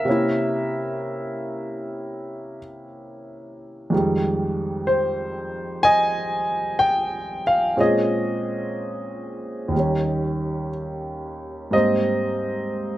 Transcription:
0.00 2.60 A#4 medium
0.00 2.57 E5 medium
0.05 3.91 C3 soft
0.05 3.92 A#3 soft
0.05 3.93 C#4 soft
0.10 3.94 E4 medium
3.90 7.77 F2 soft
3.90 7.79 D#3 soft
3.90 7.76 G#3 soft
3.95 7.80 G3 medium
4.87 5.85 C5 medium
5.83 7.75 D#5 medium
5.83 6.83 G#5 loud
6.79 7.42 G5 medium
7.47 7.80 F5 medium
7.77 9.73 A#2 soft
7.77 9.73 G#3 soft
7.77 9.73 C4 soft
7.77 9.74 C#4 medium
7.77 10.70 D#5 medium
7.82 9.71 G#4 medium
9.68 11.70 D#2 soft
9.68 11.72 D#3 soft
9.76 11.71 G3 soft
9.76 11.76 C#4 soft
11.71 12.98 G#2 soft
11.71 12.98 G3 soft
11.71 12.98 A#3 soft
11.71 12.98 C4 soft
11.71 12.98 D#5 medium
11.76 12.98 C5 soft

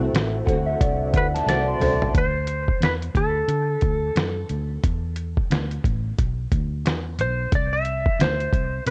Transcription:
0.00 0.11 C2 medium
0.00 0.45 A3 soft
0.00 0.46 C4 medium
0.00 2.09 C4 medium
0.00 2.10 E4 medium
0.00 0.46 F#4 medium
0.00 2.11 F#4 medium
0.00 2.12 A4 medium
0.13 0.40 A1 medium
0.13 snare loud
0.13 closed hi-hat medium
0.44 0.74 D2 medium
0.44 1.46 D3 medium
0.44 1.47 A3 medium
0.44 1.48 C4 medium
0.44 1.48 F#4 medium
0.44 0.65 F#5 medium
0.44 kick medium
0.49 closed hi-hat medium
0.66 0.79 E5 medium
0.81 1.14 C2 medium
0.81 1.12 D5 medium
0.81 kick loud
0.81 closed hi-hat loud
1.13 1.41 D2 medium
1.13 1.33 F#5 medium
1.13 kick medium
1.13 closed hi-hat medium
1.18 1.26 B4 loud
1.34 1.45 A5 medium
1.34 snare soft
1.34 closed hi-hat medium
1.46 1.74 C2 medium
1.46 1.78 D3 medium
1.46 1.79 A3 medium
1.46 1.80 C4 medium
1.46 1.81 F#4 medium
1.46 2.17 D5 loud
1.46 1.66 A5 medium
1.46 snare medium
1.46 closed hi-hat medium
1.68 2.12 C6 medium
1.79 2.08 C2 medium
1.79 2.14 D3 medium
1.79 2.14 A3 medium
1.79 2.15 C4 medium
1.79 2.15 F#4 medium
1.79 mid tom medium
1.79 open hi-hat medium
2.02 floor tom medium
2.15 2.68 D2 medium
2.15 2.84 C5 medium
2.15 kick loud
2.15 closed hi-hat loud
2.47 closed hi-hat medium
2.68 kick medium
2.81 3.08 E2 medium
2.81 2.93 B4 medium
2.81 snare loud
2.81 closed hi-hat medium
3.02 closed hi-hat medium
3.15 3.42 D2 medium
3.15 4.47 A4 medium
3.15 kick medium
3.15 closed hi-hat medium
3.48 3.75 D3 medium
3.48 closed hi-hat loud
3.81 4.09 D2 medium
3.81 kick medium
3.81 closed hi-hat medium
4.16 4.43 F#2 medium
4.16 snare loud
4.16 closed hi-hat medium
4.49 4.77 D2 medium
4.49 closed hi-hat medium
4.83 5.37 E2 medium
4.83 kick loud
4.83 closed hi-hat loud
5.16 closed hi-hat medium
5.37 kick medium
5.50 5.77 D2 medium
5.50 snare loud
5.50 closed hi-hat medium
5.71 closed hi-hat soft
5.84 6.11 A1 medium
5.84 kick medium
5.84 closed hi-hat medium
6.19 6.45 B1 medium
6.19 kick medium
6.19 closed hi-hat loud
6.52 6.85 D2 medium
6.52 kick medium
6.52 closed hi-hat medium
6.85 7.20 E2 medium
6.85 snare loud
6.85 closed hi-hat medium
7.19 7.46 B1 medium
7.19 7.54 C5 medium
7.19 closed hi-hat medium
7.52 8.06 C2 loud
7.52 7.73 D5 loud
7.52 kick loud
7.52 closed hi-hat medium
7.73 8.21 E5 loud
7.85 closed hi-hat medium
8.06 kick medium
8.20 8.46 D2 medium
8.20 8.84 C5 medium
8.20 snare loud
8.20 closed hi-hat medium
8.40 closed hi-hat medium
8.53 8.80 C2 medium
8.53 kick medium
8.53 closed hi-hat medium
8.86 8.90 C3 medium
8.86 closed hi-hat loud

